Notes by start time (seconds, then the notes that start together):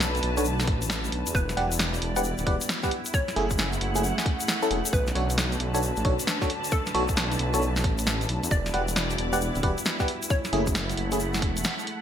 Already playing: B1 D3 A3 C#4 D4 F#4 B4 A5
0.00 snare, shaker
0.15 closed hi-hat, shaker
0.23 B1, open hi-hat
0.37 D4 F#4 A4 C#5, closed hi-hat, shaker
0.45 shaker
0.60 snare, closed hi-hat, shaker
0.67 A1, kick, open hi-hat
0.82 closed hi-hat, shaker
0.90 snare, shaker
1.04 closed hi-hat, shaker
1.12 B1, open hi-hat
1.27 E2, closed hi-hat, shaker
1.34 E1 G3 B3 E4 B4, kick, shaker
1.49 snare, closed hi-hat, shaker
1.57 E1 G4 B4 D5 F#5, snare, open hi-hat
1.68 D5
1.72 closed hi-hat, shaker
1.79 snare, shaker
1.94 closed hi-hat, shaker
2.02 E1, open hi-hat
2.16 G4 B4 D5 F#5, closed hi-hat, shaker
2.24 shaker
2.38 D1, closed hi-hat, shaker
2.46 E1 G4 B4 D5 F#5, kick, open hi-hat
2.61 closed hi-hat, shaker
2.69 snare
2.83 G4 B4 D5 F#5, kick, snare, closed hi-hat, shaker
2.91 A3 C#4 E4 G#4, open hi-hat
3.05 closed hi-hat, shaker
3.14 C#5, kick, shaker
3.19 F#5
3.28 snare, closed hi-hat, shaker
3.36 F#1 A3 C#4 E4 G#4, snare, open hi-hat
3.49 A3, kick, closed hi-hat, shaker
3.58 snare, shaker
3.73 closed hi-hat, shaker
3.81 F#1, open hi-hat
3.95 A3 C#4 E4 G#4, closed hi-hat, shaker
4.04 shaker
4.18 snare, closed hi-hat, shaker
4.26 kick, open hi-hat
4.40 closed hi-hat, shaker
4.48 snare, shaker
4.62 A3 C#4 E4 A4, closed hi-hat, shaker
4.71 E1 A3 C#4 E4 G#4, open hi-hat
4.85 closed hi-hat, shaker
4.92 B1 D3 D4 F#4 B4, kick, shaker
5.07 snare, closed hi-hat, shaker
5.15 B1 D4 F#4 A4 C#5, snare, open hi-hat
5.30 closed hi-hat, shaker
5.38 snare, shaker
5.52 A5, closed hi-hat, shaker
5.60 B1 B4, open hi-hat
5.74 D4 F#4 A4 C#5, closed hi-hat, shaker
5.82 shaker
5.96 A1, closed hi-hat, shaker
6.05 B1 D4 F#4 A4 C#5, kick, open hi-hat
6.19 closed hi-hat, shaker
6.27 snare, shaker
6.42 D4 F#4 A4 C#5, kick, snare, closed hi-hat, shaker
6.50 open hi-hat
6.64 closed hi-hat, shaker
6.71 E4 A4, kick, shaker
6.86 snare, closed hi-hat, shaker
6.94 B1 D4 F#4 A4 C#5, snare, open hi-hat
7.08 kick, closed hi-hat, shaker
7.17 snare, shaker
7.32 closed hi-hat, shaker
7.39 B1, open hi-hat
7.54 D4 F#4 A4 C#5, closed hi-hat, shaker
7.62 shaker
7.76 snare, closed hi-hat, shaker
7.84 A1, kick, open hi-hat
7.98 closed hi-hat, shaker
8.07 snare, shaker
8.21 closed hi-hat, shaker
8.29 B1, open hi-hat
8.43 E2, closed hi-hat, shaker
8.51 E1 G3 B3 D4 E4 F#4 D5, kick, shaker
8.66 snare, closed hi-hat, shaker
8.71 E1 G4 B4 D5 F#5, snare, open hi-hat
8.88 closed hi-hat, shaker
8.96 snare, shaker
9.10 closed hi-hat, shaker
9.18 E1, open hi-hat
9.33 G4 B4 D5 F#5, closed hi-hat, shaker
9.41 shaker
9.55 D1, closed hi-hat, shaker
9.63 E1 G4 B4 D5 F#5, kick, open hi-hat
9.78 closed hi-hat, shaker
9.85 snare, shaker
10.00 G4 B4 D5 F#5, kick, snare, closed hi-hat, shaker
10.08 A3 C#4 E4 G#4, open hi-hat
10.23 closed hi-hat, shaker
10.30 C#5, kick, shaker
10.42 A3, snare, closed hi-hat, shaker
10.53 F#1 A3 C#4 E4 G#4, snare, open hi-hat
10.60 F#5
10.67 kick, closed hi-hat, shaker
10.75 snare, shaker
10.89 open hi-hat, shaker
10.97 F#1, open hi-hat
11.12 A3 C#4 E4 G#4, closed hi-hat, shaker
11.20 shaker
11.34 snare, closed hi-hat, shaker
11.42 E1, kick, open hi-hat
11.57 closed hi-hat, shaker
11.64 snare, shaker
11.79 closed hi-hat, shaker
11.87 open hi-hat